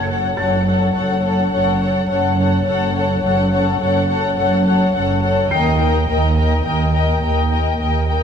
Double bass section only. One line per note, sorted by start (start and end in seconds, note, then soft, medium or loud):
0.00 0.31 F#1 soft
0.38 0.89 F#1 soft
0.95 1.46 F#1 soft
1.53 2.03 F#1 soft
2.10 2.60 F#1 medium
2.66 3.17 F#1 medium
3.23 3.74 F#1 medium
3.81 4.31 F#1 medium
4.38 4.89 F#1 medium
4.95 5.46 F#1 medium
5.53 6.03 D#2 medium
6.10 6.60 D#2 medium
6.67 7.17 D#2 soft
7.24 7.74 D#2 soft
7.81 8.23 D#2 soft